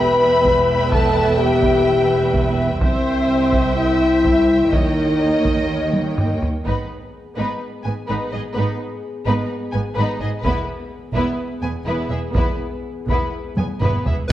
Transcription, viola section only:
Already playing: B4 E5
2.82 C5 E5
4.72 A#4 C#5
6.66 B3
7.38 B3
7.85 B3
8.09 B3
8.33 B3
8.56 B3
9.27 B3
9.74 B3
9.97 B3
10.21 B3
10.45 B3
11.15 B3
11.63 B3
11.87 B3
12.10 B3
12.36 B3
13.09 B3
13.58 B3
13.83 B3
14.08 B3

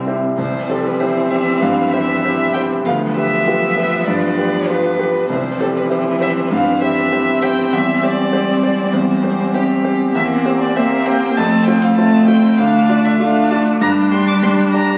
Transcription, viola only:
Already playing: C4
0.39 C4
2.86 B3
5.30 C4
10.15 C4
10.76 C4
11.38 C4
11.99 C4
12.59 D4
13.21 D4
13.82 D4

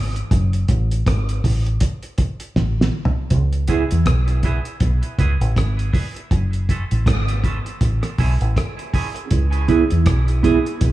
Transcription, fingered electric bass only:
Already playing: G#1
0.32 F#1
0.69 A1
1.07 G#1
1.45 A1
2.56 A1
3.31 C#2
3.92 E2
4.07 B1
4.81 B1
5.19 C#2
5.41 A1
5.57 G#1
6.32 F#1
6.92 A1
7.07 G#1
7.81 A1
8.19 B1
8.42 A1
9.32 C#2
9.92 E2
10.07 B1
10.82 B1

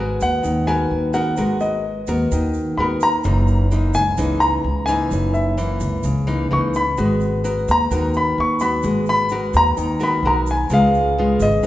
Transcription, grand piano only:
Already playing: G#5
0.22 F#5
0.67 G#5
1.14 F#5
1.61 D#5
2.78 B5
3.03 A#5
3.95 G#5
4.40 A#5
4.86 G#5
5.34 E5
6.53 C#6
6.76 B5
7.71 A#5
8.17 B5
8.40 C#6
8.61 B5
9.09 B5
9.57 A#5
10.03 B5
10.27 A#5
10.51 G#5
10.74 F5
11.42 D#5

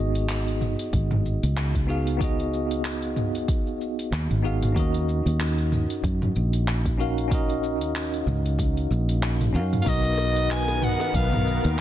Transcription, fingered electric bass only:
Already playing: G#1
0.93 G#1
1.43 C#2
3.80 B1
4.12 D#2
4.30 G#1
4.76 D#2
5.26 D#2
6.04 F#2
6.36 A#1
7.81 D#2
8.27 C#2
8.91 A#1
9.55 F#2
9.86 B1
11.14 B1
11.65 D#2

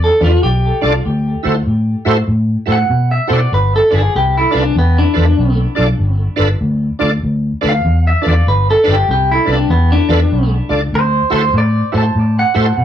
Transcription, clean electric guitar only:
0.04 A4
0.24 F4
0.43 G4
2.72 F#5
3.11 E5
3.33 D5
3.54 B4
3.76 A4
3.96 G#4
4.16 G4
4.38 E4
4.57 D4
4.78 B3
4.98 D4
7.69 F5
8.07 E5
8.28 D5
8.48 B4
8.70 A4
8.91 G4
9.11 G4
9.31 E4
9.53 D4
9.70 B3
9.92 D4
10.95 C5
11.36 C5
11.58 D5
11.98 A5
12.39 F#5

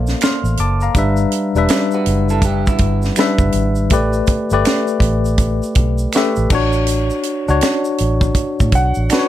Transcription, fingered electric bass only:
Already playing: A#1
0.44 A1
0.59 F#1
0.95 G1
1.55 E1
2.07 F#1
2.80 G1
3.39 F#1
3.54 G#1
3.91 A1
4.51 G1
5.01 A1
5.76 B1
6.37 A1
6.51 A1
7.49 C#2
8.01 A1
8.61 A2
8.73 B1
8.97 A1

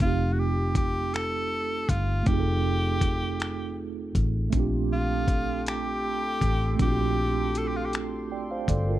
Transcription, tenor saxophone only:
0.02 F4
0.33 F#4
0.39 G4
0.77 G4
1.14 A4
1.89 F4
2.27 G4
4.93 F4
5.69 G4
6.82 G4
7.58 A4
7.68 G4
7.76 F4
7.85 G4

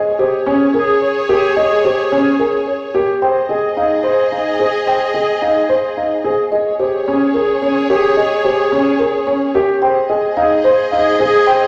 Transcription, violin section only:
Already playing: G#4 C#5
3.22 G#4 D#5
6.52 G#4 C#5
9.82 G#4 D#5

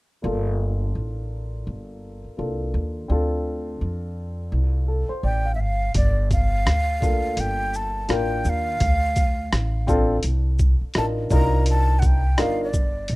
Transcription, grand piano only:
0.22 A#3 D4 F4 A4
2.37 A#3 D4 F4 A4
3.08 C4 D4 F4 A4
4.88 A4
5.09 C5
5.24 D5
5.46 F5
7.01 A#3 D4 F4 A4
8.08 A#3 D4 F4 A#4
9.87 C4 D4 F4 A4
10.95 D4 D#4 F4 A#4
11.31 D4 D#4 F4 A#4
12.37 D4 D#4 F4 A#4

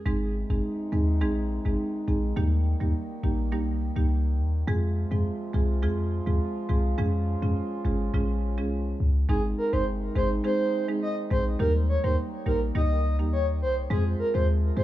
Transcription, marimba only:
0.06 G#3 C4 D#4 G#4
0.50 G#3 C4 D#4 G#4
0.92 G#3 C4 D#4 G#4
1.21 G#3 C4 D#4 G#4
1.65 G#3 C4 D#4 G#4
2.08 G#3 C4 D#4 G#4
2.36 G3 A#3 D#4 G4
2.81 G3 A#3 D#4 G4
3.23 G3 A#3 D#4 G4
3.52 G3 A#3 D#4 G4
3.96 G3 A#3 D#4 G4
4.67 G#3 C4 F4 G#4
5.11 G#3 C4 F4 G#4
5.54 G#3 C4 F4 G#4
5.82 G#3 C4 F4 G#4
6.27 G#3 C4 F4 G#4
6.69 G#3 C4 F4 G#4
6.98 G#3 C#4 F4 G#4
7.42 G#3 C#4 F4 G#4
7.85 G#3 C#4 F4 G#4
8.14 G#3 C#4 F4 G#4
8.58 G#3 C#4 F4 G#4
9.29 G#3 C4 D#4 G#4
9.73 G#3 C4 D#4 G#4
10.15 G#3 C4 D#4 G#4
10.44 G#3 C4 D#4 G#4
10.88 G#3 C4 D#4 G#4
11.31 G#3 C4 D#4 G#4
11.59 G3 A#3 D#4 G4
12.04 G3 A#3 D#4 G4
12.46 G3 A#3 D#4 G4
12.75 G3 A#3 D#4 G4
13.19 G3 A#3 D#4 G4
13.90 G#3 C4 F4 G#4
14.34 G#3 C4 F4 G#4
14.77 G#3 C4 F4 G#4

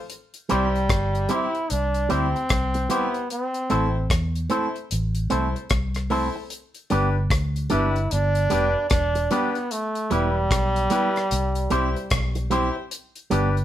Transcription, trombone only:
0.50 G3
1.31 E4
1.71 D4
2.11 C4
2.91 B3
3.32 C4
7.71 E4
8.12 D4
8.91 D4
9.32 B3
9.72 A3
10.12 G3

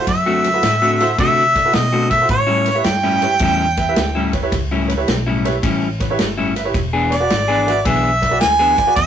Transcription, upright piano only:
0.45 A4 C5
0.54 E4 F#4 A4 B4
1.00 E4 F#4 A4 C5
1.56 A4 D5
1.65 E4 F#4 A4 B4
2.12 A4 C5
2.21 E4 F#4 A4 C5
2.67 B4 C#5
2.75 E4 G4 B4 E5
3.22 E4 G4 B4 C#5
3.77 B4 E5
3.89 E4 G4 B4 E5
4.33 B4 C#5
4.43 E4 G4 B4 C#5
4.88 B4 C#5
4.97 E4 G4 B4 C#5
5.45 E4 G4 B4 C#5
6.00 B4 C#5
6.10 E4 G4 B4 C#5
6.56 B4 E5
6.64 E4 G4 B4 C#5
7.10 B4 D5
7.20 F#4 G#4 B4 D5
7.67 F#4 G#4 B4 E5
8.22 B4 D5
8.31 F#4 G#4 B4 D5
8.78 B4 D5
8.87 F#4 G#4 B4 D5

